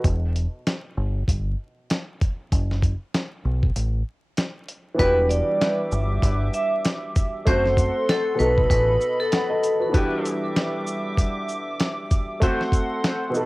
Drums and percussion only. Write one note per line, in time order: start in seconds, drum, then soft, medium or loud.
0.04 kick loud
0.04 closed hi-hat medium
0.36 closed hi-hat medium
0.67 snare loud
0.67 closed hi-hat medium
1.28 kick medium
1.28 closed hi-hat medium
1.90 snare loud
1.90 closed hi-hat medium
2.21 kick medium
2.21 closed hi-hat medium
2.52 kick loud
2.52 closed hi-hat medium
2.71 snare soft
2.82 kick medium
2.82 closed hi-hat medium
3.14 snare loud
3.14 closed hi-hat medium
3.63 kick medium
3.76 closed hi-hat medium
4.37 snare loud
4.37 closed hi-hat medium
4.68 closed hi-hat medium
4.99 kick loud
4.99 closed hi-hat medium
5.31 closed hi-hat medium
5.31 shaker medium
5.61 snare loud
5.61 closed hi-hat medium
5.92 shaker medium
6.22 kick medium
6.22 closed hi-hat loud
6.54 shaker medium
6.85 snare loud
6.85 closed hi-hat medium
7.16 kick loud
7.16 closed hi-hat medium
7.16 shaker medium
7.47 kick loud
7.47 closed hi-hat medium
7.66 snare soft
7.77 kick medium
7.77 closed hi-hat medium
7.77 shaker medium
8.09 snare loud
8.09 closed hi-hat medium
8.39 shaker medium
8.58 kick medium
8.70 kick medium
8.70 closed hi-hat loud
9.01 shaker soft
9.32 snare loud
9.32 closed hi-hat medium
9.64 closed hi-hat medium
9.64 shaker medium
9.94 kick loud
9.94 closed hi-hat medium
10.26 closed hi-hat medium
10.26 shaker medium
10.56 snare loud
10.56 closed hi-hat medium
10.87 shaker medium
11.17 kick medium
11.17 closed hi-hat loud
11.49 shaker soft
11.80 snare loud
11.80 closed hi-hat medium
12.11 kick loud
12.11 closed hi-hat medium
12.11 shaker medium
12.42 kick loud
12.42 closed hi-hat medium
12.61 snare soft
12.72 kick medium
12.72 closed hi-hat medium
12.72 shaker medium
13.04 snare loud
13.04 closed hi-hat medium
13.34 shaker medium